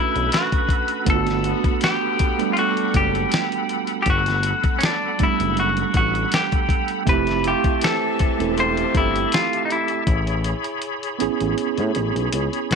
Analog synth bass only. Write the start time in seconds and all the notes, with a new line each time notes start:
0.16 B1
1.07 G1
2.95 F#1
4.07 G1
5.21 F#1
5.40 F#1
5.95 A1
7.07 F1
8.21 E1
8.40 E1
8.95 G1
10.07 A1
11.21 A1
11.41 A1
11.78 A2
11.96 A1
12.16 B1
12.33 C#2
12.71 B1